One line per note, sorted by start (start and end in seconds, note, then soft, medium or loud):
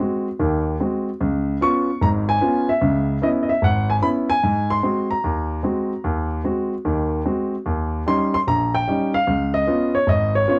0.00 0.27 G#3 soft
0.00 0.27 C4 soft
0.00 0.28 F#4 medium
0.39 0.75 D#2 medium
0.39 0.74 D#3 medium
0.80 1.08 G#3 soft
0.80 1.08 C4 soft
0.80 1.08 F#4 medium
1.20 1.55 C#2 medium
1.61 1.89 B3 soft
1.61 1.89 C#4 soft
1.61 1.89 F4 medium
1.61 2.03 C#6 medium
2.02 2.36 G#1 medium
2.02 2.36 G#2 medium
2.02 2.08 A#5 medium
2.29 2.70 G#5 medium
2.41 2.69 B3 medium
2.41 2.69 C#4 soft
2.41 2.70 F4 medium
2.69 3.19 E5 medium
2.81 3.16 C#2 medium
2.81 3.17 C#3 medium
3.22 3.50 B3 soft
3.22 3.50 C#4 soft
3.22 3.50 E4 medium
3.22 3.28 D#5 medium
3.43 3.49 D#5 medium
3.49 3.63 E5 medium
3.62 3.97 G#1 medium
3.62 3.88 F#5 medium
3.90 3.95 G#5 medium
4.02 4.30 B3 soft
4.02 4.31 C#4 soft
4.02 4.31 E4 medium
4.02 4.09 B5 medium
4.30 4.71 G#5 loud
4.44 4.78 G#2 medium
4.70 5.08 C6 medium
4.83 5.11 G#3 soft
4.83 5.11 C4 soft
4.83 5.12 F#4 medium
5.11 6.28 A#5 medium
5.24 5.59 D#2 medium
5.63 5.92 G#3 soft
5.63 5.92 C4 soft
5.63 5.92 F#4 medium
6.04 6.39 D#2 medium
6.44 6.73 G#3 soft
6.44 6.73 C4 soft
6.44 6.73 F#4 medium
6.85 7.20 D#2 medium
6.85 7.20 D#3 medium
7.25 7.54 G#3 soft
7.25 7.54 C4 soft
7.25 7.54 F#4 medium
7.66 8.01 D#2 medium
8.06 8.34 G3 medium
8.06 8.35 C#4 soft
8.06 8.35 D#4 medium
8.06 8.32 C6 medium
8.34 8.39 C6 medium
8.47 8.82 A#1 medium
8.47 8.75 A#5 medium
8.74 9.12 G5 medium
8.88 9.15 G3 medium
8.88 9.16 C#4 soft
8.88 9.16 D#4 medium
9.14 9.52 F5 medium
9.27 9.62 C#2 medium
9.54 9.96 D#5 medium
9.67 9.95 B3 soft
9.67 9.95 C#4 soft
9.67 9.96 F4 medium
9.95 10.09 C#5 medium
10.07 10.43 G#1 medium
10.07 10.33 D#5 medium
10.35 10.48 C#5 medium
10.47 10.59 B3 medium
10.47 10.59 C#4 soft
10.47 10.59 F4 medium
10.47 10.56 C#5 medium